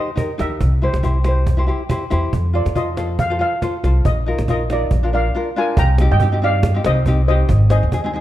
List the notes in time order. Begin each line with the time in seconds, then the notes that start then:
Already playing: D#5
0.08 cajon slap
0.15 D#4 G4 A#4, cajon bass, cajon slap
0.38 D#2 D#4 G4 A#4 E5, cajon slap
0.51 cajon slap
0.61 C2, cajon bass
0.82 E4 G4 C5, cajon slap
0.93 C2, cajon slap
1.03 E4 G4 C5, cajon bass
1.24 E4 G4 C5, cajon slap
1.29 C5
1.37 cajon slap
1.47 cajon bass
1.57 E4 G4 C5
1.67 E4 G4 C5, cajon slap
1.80 cajon slap
1.89 E4 G4 C5, cajon bass, cajon slap
2.10 E2 E4 G4 C5, cajon slap
2.23 cajon slap
2.33 F2, cajon bass
2.53 F4 A4 C5 D5, cajon slap
2.65 F2, cajon slap
2.75 F4 A4 C5 D#5, cajon bass
2.97 F4 A4 C5, cajon slap
3.09 cajon slap
3.19 F5, cajon bass
3.30 F4 A4 C5
3.39 F4 A4 C5 F5, cajon slap
3.52 cajon slap
3.62 F4 A4 C5, cajon bass, cajon slap
3.84 C2 F4 A4 C5, cajon slap
3.96 cajon slap
4.05 A#1 D#5, cajon bass
4.26 D#4 F4 A#4, cajon slap
4.38 A#1, cajon slap
4.48 D#4 F4 A#4 D#5, cajon bass
4.70 D#4 F4 A#4 D5, cajon slap
4.82 cajon slap
4.91 A#1, cajon bass
5.03 D4 F4 A#4
5.12 D4 F4 A#4 D5 F5, cajon slap
5.23 cajon slap
5.35 D4 F4 A#4
5.56 D4 F4 A#4 F5 G#5
5.77 C2 G5 A#5, cajon bass
5.98 C4 D#4 G4, cajon slap
6.09 G2 D#5 G5, cajon slap
6.20 C4 D#4 G4, cajon bass
6.32 C4 D#4 G4
6.41 C4 D#4 G4 D5 F5, cajon slap
6.53 cajon slap
6.63 cajon bass, cajon slap
6.74 C4 D#4 G4
6.84 C2 C4 D#4 G4 C5 D#5, cajon slap
7.06 C4 D#4 G4, cajon bass
7.26 C4 D#4 G4 C5 D#5, cajon slap
7.39 cajon slap
7.49 G#1, cajon bass
7.70 C4 D#4 G#4 C5 D#5, cajon slap
7.82 D#2, cajon slap
7.92 C4 D#4 G#4, cajon bass
8.04 C4 D#4 G#4
8.13 C4 D#4 G#4, cajon slap